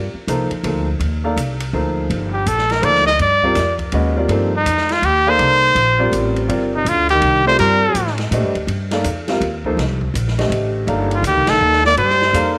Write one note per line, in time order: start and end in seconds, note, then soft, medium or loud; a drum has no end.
0.00 0.12 G2 medium
0.14 muted upright bass stroke soft
0.27 0.49 C2 medium
0.27 0.48 F3 medium
0.27 0.49 A#3 medium
0.27 0.49 D#4 medium
0.27 0.49 A4 medium
0.27 0.49 C5 medium
0.27 hi-hat pedal medium
0.27 ride medium
0.50 muted upright bass stroke soft
0.50 ride soft
0.63 0.99 D2 medium
0.63 0.85 F3 medium
0.63 0.85 A#3 soft
0.63 0.85 D#4 soft
0.63 0.85 A4 soft
0.63 0.85 C5 medium
0.63 ride medium
0.99 1.35 D#2 medium
0.99 ride medium
1.24 1.36 A#3 medium
1.24 1.36 D#4 medium
1.24 1.36 A4 medium
1.24 1.36 D5 medium
1.24 1.36 F5 medium
1.36 1.72 C2 medium
1.36 hi-hat pedal medium
1.36 ride medium
1.60 ride medium
1.73 2.09 D2 medium
1.73 2.29 F3 medium
1.73 2.28 A#3 soft
1.73 2.28 D#4 medium
1.73 2.28 A4 medium
1.73 2.29 C5 medium
2.10 2.45 G1 medium
2.10 ride medium
2.33 2.49 G4 medium
2.46 2.82 A#1 medium
2.46 2.73 A4 medium
2.46 hi-hat pedal medium
2.46 ride medium
2.58 snare soft
2.70 2.86 A#4 medium
2.70 snare soft
2.70 ride soft
2.82 3.18 D2 medium
2.82 3.03 F3 medium
2.82 3.03 A#3 medium
2.82 3.03 D#4 medium
2.82 3.03 A4 medium
2.82 3.03 C5 medium
2.82 3.06 D5 loud
2.82 ride medium
2.95 snare soft
3.06 3.19 D#5 medium
3.06 snare soft
3.19 3.55 G2 medium
3.19 3.76 D5 medium
3.19 ride medium
3.42 3.55 G3 medium
3.42 3.55 C4 medium
3.42 3.55 F4 medium
3.42 3.55 A#4 medium
3.42 3.55 D5 medium
3.42 kick soft
3.55 3.91 F2 medium
3.55 snare soft
3.55 hi-hat pedal soft
3.55 ride medium
3.79 kick medium
3.79 ride soft
3.92 4.28 D#2 medium
3.92 4.13 G#3 medium
3.92 4.14 C#4 medium
3.92 4.14 F#4 medium
3.92 4.14 B4 medium
3.92 4.14 D#5 medium
3.92 ride medium
4.16 4.48 G3 medium
4.16 4.48 C4 medium
4.16 4.48 F4 medium
4.16 4.48 A#4 medium
4.16 4.48 D5 medium
4.28 4.64 G2 medium
4.28 4.50 F3 medium
4.28 4.51 A#3 medium
4.28 4.51 D#4 medium
4.28 4.50 A4 medium
4.28 4.51 C5 medium
4.28 ride medium
4.56 4.94 D#4 medium
4.66 5.01 F2 medium
4.66 hi-hat pedal medium
4.66 ride medium
4.78 snare soft
4.89 5.07 F4 medium
4.89 snare soft
4.89 ride soft
5.02 5.38 D#2 medium
5.02 5.31 G4 medium
5.02 ride medium
5.27 5.73 A#3 medium
5.27 5.73 D#4 medium
5.27 5.73 A4 medium
5.27 6.37 C5 loud
5.27 5.73 D5 medium
5.27 5.73 F5 medium
5.39 5.74 C2 medium
5.39 ride medium
5.75 6.11 A#1 medium
5.75 ride medium
5.99 6.46 G3 medium
5.99 6.46 C4 medium
5.99 6.46 F4 medium
5.99 6.46 A#4 medium
5.99 6.46 D5 medium
6.12 6.47 A1 medium
6.12 hi-hat pedal soft
6.12 ride medium
6.36 ride soft
6.48 6.84 G1 medium
6.48 6.69 G3 medium
6.48 6.69 C4 medium
6.48 6.69 F4 medium
6.48 6.69 A#4 medium
6.48 6.69 D5 medium
6.48 ride medium
6.75 6.91 C3 medium
6.75 6.90 D#4 medium
6.85 7.20 D2 medium
6.85 7.10 F4 medium
6.85 hi-hat pedal medium
6.85 ride medium
6.89 7.10 D3 medium
7.09 7.44 D#3 medium
7.09 7.43 G4 medium
7.09 ride soft
7.21 7.57 C2 medium
7.21 ride medium
7.46 7.93 G3 medium
7.46 7.57 A3 medium
7.46 7.93 C4 medium
7.46 7.93 F4 medium
7.46 7.93 A#4 medium
7.46 7.58 C5 loud
7.46 7.93 D5 medium
7.59 7.94 G2 medium
7.59 8.14 G3 medium
7.59 8.14 A#4 medium
7.59 ride medium
7.94 8.30 A2 medium
7.94 hi-hat pedal medium
7.94 ride medium
8.07 snare soft
8.18 snare soft
8.18 ride soft
8.31 8.43 A#2 medium
8.31 8.53 A3 medium
8.31 8.53 D4 medium
8.31 8.53 G4 medium
8.31 8.53 C5 medium
8.31 8.53 D#5 medium
8.31 hi-hat pedal medium
8.31 ride medium
8.43 8.54 G2 medium
8.55 8.66 D#2 medium
8.55 ride soft
8.67 9.03 G2 medium
8.67 ride medium
8.91 9.03 A#3 medium
8.91 9.03 D#4 medium
8.91 9.04 A4 medium
8.91 9.04 D5 medium
8.91 9.04 F5 medium
8.91 snare soft
8.91 ride soft
9.04 9.40 F2 medium
9.04 hi-hat pedal medium
9.04 ride medium
9.28 9.40 G3 medium
9.28 9.40 C4 medium
9.28 9.40 F4 medium
9.28 9.40 A#4 medium
9.28 9.41 F5 medium
9.28 snare soft
9.28 ride soft
9.41 9.76 D#2 medium
9.41 ride medium
9.64 9.77 F3 medium
9.64 9.77 A#3 medium
9.64 9.77 D#4 medium
9.64 9.77 A4 medium
9.64 9.77 C5 medium
9.64 kick soft
9.77 10.12 C2 medium
9.77 snare soft
9.77 ride medium
10.01 kick medium
10.14 10.49 A#1 medium
10.14 hi-hat pedal medium
10.14 ride medium
10.28 snare soft
10.38 10.85 D3 medium
10.38 10.85 A3 medium
10.38 10.85 G4 medium
10.38 10.85 C5 medium
10.38 10.85 D#5 medium
10.38 snare soft
10.38 ride soft
10.50 10.85 A1 medium
10.50 ride medium
10.87 11.22 G1 medium
10.87 11.89 A#3 medium
10.87 11.89 D#4 medium
10.87 11.89 A4 medium
10.87 11.89 D5 medium
10.87 11.89 F5 medium
10.87 ride medium
11.11 11.25 D3 medium
11.11 11.25 F4 medium
11.11 ride soft
11.22 11.36 D2 medium
11.22 11.51 D#3 medium
11.22 hi-hat pedal medium
11.22 ride medium
11.27 11.51 G4 medium
11.36 11.48 C2 medium
11.47 11.60 A#1 medium
11.47 11.84 D#3 medium
11.47 11.85 A4 medium
11.47 snare medium
11.47 ride medium
11.61 11.96 D#2 medium
11.73 snare soft
11.85 11.96 A#3 medium
11.85 11.97 D5 loud
11.85 snare soft
11.96 12.32 G2 medium
11.96 12.52 G3 medium
11.96 12.53 C5 medium
11.96 ride medium
12.10 snare soft
12.22 snare soft
12.33 12.58 F2 medium
12.33 12.54 A#3 medium
12.33 12.54 D#4 medium
12.33 12.54 A4 medium
12.33 12.55 D5 medium
12.33 12.55 F5 medium
12.33 hi-hat pedal soft
12.33 ride medium